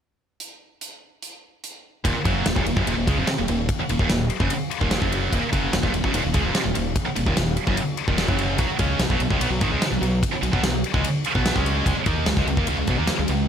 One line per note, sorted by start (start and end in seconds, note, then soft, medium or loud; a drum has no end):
0.40 closed hi-hat medium
0.81 closed hi-hat medium
1.22 closed hi-hat medium
1.64 closed hi-hat medium
2.04 2.14 D#1 medium
2.04 2.14 D#2 medium
2.04 2.14 A#2 medium
2.04 kick medium
2.04 ride medium
2.15 muted distorted electric guitar stroke medium
2.15 muted fingered electric bass stroke soft
2.25 2.44 F#1 medium
2.25 2.45 F#2 medium
2.25 2.45 C#3 medium
2.25 2.45 F#3 loud
2.25 kick loud
2.25 ride medium
2.45 2.55 D#1 medium
2.45 2.54 D#2 medium
2.45 2.55 A#2 medium
2.45 snare loud
2.45 ride loud
2.56 2.65 D#1 medium
2.56 2.65 D#2 medium
2.56 2.65 A#2 loud
2.56 kick loud
2.66 2.76 D#1 medium
2.66 2.76 D#2 medium
2.66 2.76 A#2 medium
2.66 ride medium
2.76 2.86 F#1 loud
2.76 2.86 F#2 medium
2.76 2.86 C#3 medium
2.76 kick loud
2.87 2.96 D#1 medium
2.87 2.95 D#2 medium
2.87 2.96 A#2 loud
2.87 ride loud
2.96 3.06 D#1 medium
2.96 3.07 D#2 medium
2.96 3.07 A#2 medium
3.07 3.17 C#2 medium
3.07 3.17 C#3 medium
3.07 3.17 G#3 medium
3.07 kick loud
3.07 ride medium
3.17 3.27 F1 medium
3.17 3.27 F2 medium
3.17 3.27 C3 medium
3.27 muted distorted electric guitar stroke medium
3.27 snare loud
3.27 ride medium
3.38 3.48 D#1 medium
3.38 3.47 D#2 medium
3.38 3.47 A#2 medium
3.48 3.68 D#1 medium
3.48 3.65 D#2 medium
3.48 3.65 A#2 medium
3.48 ride medium
3.69 kick loud
3.69 ride medium
3.80 muted fingered electric bass stroke soft
3.80 muted distorted electric guitar stroke medium
3.89 3.99 D#1 medium
3.89 3.99 D#2 medium
3.89 4.00 A#2 medium
3.89 ride medium
3.99 4.09 D#1 medium
3.99 4.08 D#2 medium
3.99 4.09 A#2 loud
3.99 kick medium
4.09 4.30 D#1 medium
4.09 4.26 D#2 medium
4.09 4.27 A#2 medium
4.09 snare loud
4.09 ride medium
4.30 ride medium
4.40 4.50 F#1 loud
4.40 4.50 F#2 medium
4.40 4.50 C#3 loud
4.40 kick loud
4.50 ride medium
4.71 ride medium
4.81 5.00 D#1 medium
4.81 5.01 D#2 medium
4.81 5.01 A#2 loud
4.81 5.02 D#3 medium
4.81 kick medium
4.91 snare loud
4.91 ride medium
5.02 5.30 F#1 medium
5.02 5.32 F#2 medium
5.02 5.32 C#3 medium
5.02 5.33 F#3 medium
5.02 kick loud
5.12 ride medium
5.32 5.42 D#1 medium
5.32 5.42 D#2 medium
5.32 5.43 A#2 loud
5.32 kick medium
5.32 ride medium
5.43 muted fingered electric bass stroke soft
5.43 muted distorted electric guitar stroke medium
5.53 5.72 F#1 medium
5.53 5.73 F#2 medium
5.53 5.73 C#3 medium
5.53 5.73 F#3 loud
5.53 kick loud
5.53 ride medium
5.73 5.82 D#1 medium
5.73 5.82 D#2 medium
5.73 5.83 A#2 medium
5.73 snare loud
5.73 ride medium
5.83 5.92 D#1 medium
5.83 5.92 D#2 medium
5.83 5.93 A#2 loud
5.83 kick loud
5.93 6.03 D#1 medium
5.93 6.03 D#2 medium
5.93 6.04 A#2 medium
5.93 ride medium
6.04 6.13 F#1 loud
6.04 6.13 F#2 medium
6.04 6.14 C#3 loud
6.04 kick loud
6.13 6.24 D#1 medium
6.13 6.22 D#2 medium
6.13 6.23 A#2 medium
6.13 ride loud
6.24 6.33 D#1 medium
6.24 6.34 D#2 medium
6.24 6.33 A#2 medium
6.34 6.44 C#2 medium
6.34 6.44 C#3 medium
6.34 6.44 G#3 loud
6.34 kick loud
6.34 ride medium
6.44 6.55 F1 medium
6.44 6.54 F2 medium
6.44 6.54 C3 medium
6.54 muted distorted electric guitar stroke medium
6.54 snare loud
6.54 ride loud
6.64 6.75 D#1 medium
6.64 6.74 D#2 medium
6.64 6.74 A#2 medium
6.75 6.95 D#1 medium
6.75 6.92 D#2 medium
6.75 6.92 A#2 medium
6.75 ride medium
6.96 kick loud
6.96 ride medium
7.06 muted distorted electric guitar stroke medium
7.06 muted fingered electric bass stroke soft
7.16 7.26 D#1 medium
7.16 7.25 D#2 medium
7.16 7.25 A#2 medium
7.16 ride medium
7.26 7.36 D#1 medium
7.26 7.35 D#2 medium
7.26 7.35 A#2 medium
7.26 kick loud
7.36 7.56 D#1 medium
7.36 7.53 D#2 medium
7.36 7.53 A#2 medium
7.36 snare loud
7.36 ride loud
7.57 ride medium
7.67 7.77 F#1 loud
7.67 7.77 F#2 medium
7.67 7.77 C#3 medium
7.67 kick loud
7.77 ride loud
7.97 ride medium
8.08 8.27 D#1 medium
8.08 8.28 D#2 medium
8.08 8.28 A#2 loud
8.08 8.29 D#3 medium
8.08 kick loud
8.18 snare loud
8.18 ride medium
8.28 8.57 F#1 medium
8.28 8.59 F#2 medium
8.28 8.59 C#3 medium
8.28 8.59 F#3 loud
8.28 kick loud
8.39 ride medium
8.58 8.69 B1 medium
8.58 8.68 B2 medium
8.58 8.69 F#3 loud
8.58 kick loud
8.58 ride medium
8.69 muted distorted electric guitar stroke medium
8.69 muted fingered electric bass stroke soft
8.79 8.98 C#2 medium
8.79 9.00 C#3 medium
8.79 9.00 G#3 medium
8.79 9.00 C#4 medium
8.79 kick loud
8.79 ride medium
8.99 9.09 B1 medium
8.99 9.10 B2 medium
8.99 9.10 F#3 medium
8.99 snare loud
8.99 ride medium
9.10 9.19 B1 medium
9.10 9.20 B2 medium
9.10 9.21 F#3 loud
9.10 kick loud
9.20 9.30 B1 medium
9.20 9.30 B2 medium
9.20 9.31 F#3 medium
9.20 ride medium
9.30 9.40 C#2 loud
9.30 9.41 C#3 medium
9.30 9.41 G#3 medium
9.30 kick loud
9.41 9.49 B1 medium
9.41 9.50 B2 medium
9.41 9.50 F#3 loud
9.41 ride loud
9.50 9.60 B1 medium
9.50 9.61 B2 medium
9.50 9.62 F#3 medium
9.61 9.71 G#1 medium
9.61 9.71 G#2 medium
9.61 9.71 D#3 loud
9.61 kick loud
9.61 ride medium
9.71 9.81 C#2 medium
9.71 9.81 C#3 medium
9.71 9.81 G#3 medium
9.82 muted fingered electric bass stroke soft
9.82 muted distorted electric guitar stroke medium
9.82 snare loud
9.82 ride loud
9.91 10.01 B1 medium
9.91 10.00 B2 medium
9.91 10.00 F#3 medium
10.01 10.21 B1 medium
10.01 10.18 B2 medium
10.01 10.18 F#3 medium
10.01 ride medium
10.23 kick loud
10.23 ride loud
10.32 muted fingered electric bass stroke soft
10.32 muted distorted electric guitar stroke medium
10.42 10.52 B1 medium
10.42 10.52 B2 medium
10.42 10.52 F#3 medium
10.42 ride medium
10.53 10.62 B1 medium
10.53 10.63 B2 medium
10.53 10.63 F#3 loud
10.53 kick loud
10.63 10.82 B1 medium
10.63 10.80 B2 medium
10.63 10.80 F#3 medium
10.63 snare loud
10.63 ride loud
10.84 ride medium
10.94 11.04 C#2 loud
10.94 11.04 C#3 medium
10.94 11.04 G#3 medium
10.94 kick loud
11.04 ride loud
11.25 ride medium
11.35 11.54 B1 medium
11.35 11.55 B2 medium
11.35 11.55 F#3 medium
11.35 11.55 B3 medium
11.35 kick loud
11.46 snare loud
11.46 ride medium
11.56 11.84 C#2 medium
11.56 11.85 C#3 medium
11.56 11.86 G#3 medium
11.56 11.86 C#4 medium
11.56 kick medium
11.66 ride medium
11.86 11.95 C#2 medium
11.86 11.96 C#3 medium
11.86 11.96 G#3 loud
11.86 kick medium
11.86 ride medium
11.97 muted fingered electric bass stroke soft
11.97 muted distorted electric guitar stroke medium
12.06 12.25 D#2 medium
12.06 12.26 D#3 medium
12.06 12.27 A#3 medium
12.06 12.27 D#4 medium
12.06 kick loud
12.06 ride medium
12.26 12.36 C#2 medium
12.26 12.36 C#3 medium
12.26 12.36 G#3 medium
12.26 snare loud
12.26 ride medium
12.37 12.46 C#2 medium
12.37 12.47 C#3 medium
12.37 12.47 G#3 loud
12.37 kick loud
12.37 snare soft
12.47 12.56 C#2 medium
12.47 12.57 C#3 medium
12.47 12.58 G#3 medium
12.47 ride medium
12.57 12.67 D#2 loud
12.57 12.67 D#3 medium
12.57 12.67 A#3 medium
12.57 kick loud
12.67 12.77 C#2 medium
12.67 12.77 C#3 loud
12.67 12.77 G#3 loud
12.67 ride medium
12.78 12.87 C#2 medium
12.78 12.88 C#3 medium
12.78 12.88 G#3 medium
12.87 12.97 B1 medium
12.87 12.98 B2 medium
12.87 12.98 F#3 medium
12.87 kick medium
12.87 ride medium
12.98 13.08 D#2 medium
12.98 13.08 D#3 medium
12.98 13.08 A#3 medium
13.07 muted fingered electric bass stroke soft
13.07 muted distorted electric guitar stroke medium
13.07 snare loud
13.07 ride medium
13.19 13.28 C#2 medium
13.19 13.28 C#3 medium
13.19 13.29 G#3 medium
13.28 13.48 C#2 medium
13.28 13.46 C#3 medium
13.28 13.46 G#3 medium
13.28 ride medium